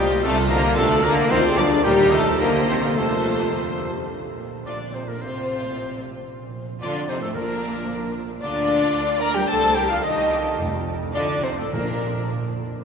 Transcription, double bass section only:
Already playing: C2
0.24 C2
0.78 D2
1.30 D2
1.84 D#2
2.40 D#2
2.97 F2
4.11 A#1
4.67 A#1
5.22 A1
6.29 A#1
6.82 F2
7.35 A#1
8.42 D2
8.95 D2
9.48 C2
10.03 C2
10.59 F2
11.15 F2
11.73 A#1

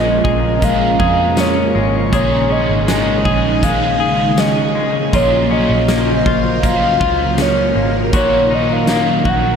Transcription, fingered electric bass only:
Already playing: A#1
0.25 A#1
1.00 F2
1.75 G#1
2.13 A#1
2.69 G#1
3.25 A#1
5.13 A#1
5.70 A#1
6.26 A#1
7.01 C#2
7.75 G#1
8.13 A#1
8.69 G#1
9.25 A#1

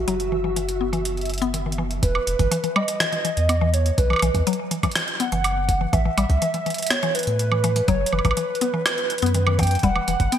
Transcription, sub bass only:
0.08 F#1
2.03 E1
2.27 E1
2.39 G1
3.37 E2
3.98 B1
4.22 B1
4.35 E2
5.32 F#1
5.93 A1
6.17 A1
6.30 C#2
7.27 A2
7.88 F#1
8.13 F#1
8.25 A1
9.22 F#2
9.83 E1
10.08 E1
10.20 G1

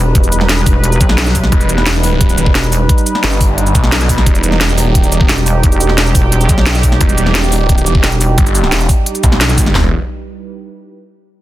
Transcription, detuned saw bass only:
1.52 E1
2.38 E1
3.24 G1
3.75 B1
3.92 B1
4.26 E1
4.86 D#1
5.12 E1
7.01 E1
7.86 E1
8.38 G1
8.72 E1
9.24 B1
9.41 B1
9.75 E1

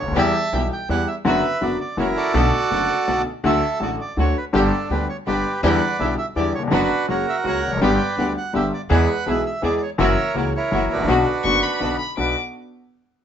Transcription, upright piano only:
0.03 C#2
0.08 D2
0.13 D#2 E2 E3 G3 B3 G4
0.53 B1 B2 E3 G3 B3 G4
0.89 E2 E3 G3 B3 G4
1.25 F#2 D3 F#3 B3 F#4
1.61 F#2 D3 F#3 B3 F#4
1.97 F#2 E3 F#3 A#3 C#4 F#4
2.34 B1 B2 D3 A3 B3 F#4
2.71 F#1 F#2 D3 A3 B3 F#4
3.08 B1 B2 D3 A3 B3 F#4
3.44 D2 D3 F#3 A3 F#4
3.79 A1 A2 D3 F#3 A3 F#4
4.17 D2 D3 F#3 A3 F#4
4.53 G1 G2 D3 G3 B3 G4
4.91 D2 D3 G3 B3 G4
5.26 G1 G2 D3 G3 B3 G4
5.63 E2 D3 E3 G3 B3 E4
5.99 B1 B2 D3 G3 B3 E4
6.36 E2 D3 E3 G3 B3 E4
6.59 D#2
6.63 E2
6.67 F2 D3 F#3 B3
6.72 F#2 F#4
7.08 F#2 C#3 F#3 A#3 F#4
7.44 C#2 C#3 F#3 A#3 F#4
7.67 E2
7.73 F2
7.77 F#2
7.81 G1 G2 D3 G3 B3 G4
8.18 D2 D3 G3 B3 G4
8.53 G1 G2 D3 G3 B3 G4
8.90 E2 E3 G#3 B3 G#4
9.26 B1 B2 E3 G#3 B3 G#4
9.62 E2 E3 G#3 B3 G#4
9.98 F#2 E3 F#3 A#3 C#4 F#4
10.34 C#2 C#3 E3 A#3 C#4 F#4
10.71 F#2 E3 F#3 A#3 C#4 F#4
10.94 G#1 A1
11.03 A#1
11.07 B1 B2 D3 F#3 B3 F#4
11.45 F#1 F#2 D3 F#3 B3 F#4
11.80 B1 B2 D3 F#3 B3 F#4
12.17 B1 B3 D4 F#4

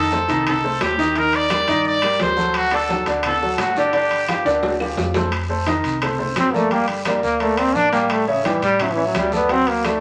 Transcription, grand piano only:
0.12 A3 A4 C5
0.28 D#3 D#4 D#5
0.64 A3 A4 C5
0.98 D#3 D#4 D#5
1.16 D#3 D#4 D#5
1.50 G3 G4 A#4
1.68 D#3 D#4 D#5
2.03 G3 G4 A#4
2.37 F#3 F#4 A4
2.72 D3 D4 D5
2.90 F#3 F#4 A4
3.07 D3 D4 D5
3.42 F#3 F#4 A4
3.77 D3 D4 D5
3.93 D3 D4 D5
4.28 F3 F4 G4
4.45 D3 D4 D5
4.80 F3 F4 G4
5.16 A3 A4 C5
5.49 A3 A4 C5
5.66 D#3 D#4 D#5
6.02 A3 A4 C5
6.19 A3 A4 C5
6.53 A#3 A#4 D5
6.72 G3 G4 G5
7.06 A#3 A#4 D5
7.40 A#3 A#4 D5
7.57 A#3 A#4 D5
7.93 G3 G4 G5
8.28 C#4 C#5 E5
8.45 G3 G4 G5
8.80 C#4 C#5 E5
8.97 C#4 C#5 E5
9.32 A3 A4 D5
9.49 F#3 F#4 F#5
9.84 A3 A4 D5

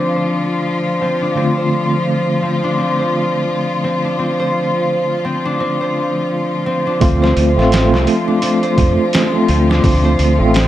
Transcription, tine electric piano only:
Already playing: D3 A3 C4 F4
1.35 D3 A3 C4 F4
7.00 A3 C4 F4
7.56 A3 C4 F4
9.32 A3 C4 F4
10.38 A3 C4 F4

